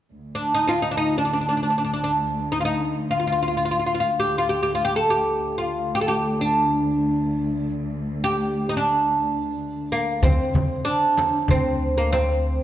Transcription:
0.11 cello section D2
0.35 oud D4
0.54 oud D#4
0.67 oud D#4 F4
0.82 oud D#4
0.91 oud D4
0.97 oud D#4
1.18 oud D4
1.25 oud D4
1.33 oud D4
1.41 oud D4
1.49 oud D4
1.57 oud D4
1.63 oud D4
1.70 oud D4
1.78 oud D4
1.85 oud D4
1.94 oud D4
2.04 oud D4
2.52 oud D#4
2.60 oud F4
2.65 oud D#4
3.11 oud F4
3.20 oud F4
3.27 oud F4
3.32 oud F4
3.43 oud F4
3.48 oud F4
3.57 oud F4
3.65 oud F4
3.71 oud F4
3.79 oud F4
3.87 oud F4
3.95 oud F4
4.00 oud F4
4.20 oud G4
4.38 oud F4
4.49 oud G4
4.63 oud G4
4.75 oud F4
4.85 oud G4
4.96 oud A4
5.10 oud G4
5.16 cello section D2
5.58 oud F4
5.95 oud G4
6.01 oud A4
6.08 oud G4
6.41 oud D4
8.24 oud G4
8.69 oud D#4
8.77 oud D4
9.92 oud A#3
10.23 upright bass D2, oud C4, frame drum, darbuka dum
10.54 upright bass D3, darbuka dum, frame drum
10.85 oud D4, darbuka ka
11.18 darbuka tek, frame drum
11.35 darbuka ka
11.48 upright bass D2, oud C4, frame drum, darbuka dum
11.66 darbuka ka
11.98 oud A#3
12.12 oud C4, darbuka tek, frame drum

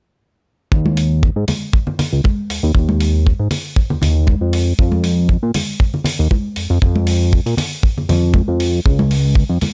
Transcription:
0.72 analog synth bass D#2, kick
0.86 high conga
0.97 open hi-hat
1.23 kick
1.36 analog synth bass G#2
1.48 open hi-hat, high conga, low conga
1.73 kick
1.87 low conga
1.99 open hi-hat, low conga
2.13 analog synth bass C#2
2.24 kick, high conga
2.49 analog synth bass D#2, open hi-hat
2.63 analog synth bass D#2
2.74 analog synth bass D#2, kick
2.89 high conga
3.01 open hi-hat
3.27 kick
3.40 analog synth bass G#2
3.51 open hi-hat, low conga
3.76 kick
3.90 analog synth bass D#2, low conga
4.02 analog synth bass D#2, open hi-hat, low conga
4.27 kick, high conga
4.41 analog synth bass F2
4.53 open hi-hat
4.79 analog synth bass F2, kick
4.92 high conga
5.04 open hi-hat
5.29 kick
5.43 analog synth bass A#2
5.54 open hi-hat, high conga, low conga
5.80 kick
5.94 low conga
6.04 open hi-hat, low conga
6.19 analog synth bass D#2
6.31 kick, high conga
6.56 analog synth bass F2, open hi-hat
6.70 analog synth bass F2
6.82 analog synth bass F2, kick
6.96 high conga
7.07 open hi-hat
7.33 kick
7.46 analog synth bass A#2, open hi-hat
7.57 open hi-hat, low conga
7.83 kick
7.97 analog synth bass F2, low conga
8.09 analog synth bass F2, open hi-hat, low conga
8.34 kick, high conga
8.48 analog synth bass F2
8.60 open hi-hat
8.86 analog synth bass C#2, kick
8.99 high conga
9.11 open hi-hat
9.35 kick
9.50 analog synth bass F2
9.61 open hi-hat, high conga, low conga

